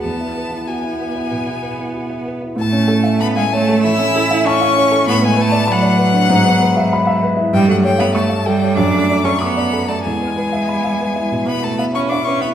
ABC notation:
X:1
M:4/4
L:1/16
Q:1/4=95
K:A
V:1 name="Violin"
a4 g8- g2 z2 | a4 b g a2 e'4 c'4 | b g a2 f8- f2 z2 | =g f g b a2 g2 d'3 c' b3 a |
g8- g b a b c' d' c' b |]
V:2 name="Grand piano"
E,, E B E F E B E B,, E B E F E B E | A,, C A e a e c A E, C A e a e c A | A,, B, B d b d B D G,, B, B e b e B E | =G,, A, c e c' e A c F,, A, d A d' d A d |
E,, B, B e b e B E B,, B, B e b e B E |]
V:3 name="Cello"
B,4 B,8- B,2 z2 | A,4 B, G, A,2 E4 C4 | B, G, A,2 F,8- F,2 z2 | =G, F, G, B, A,2 G,2 D3 C B,3 A, |
G,8- G, B, A, B, C D C B, |]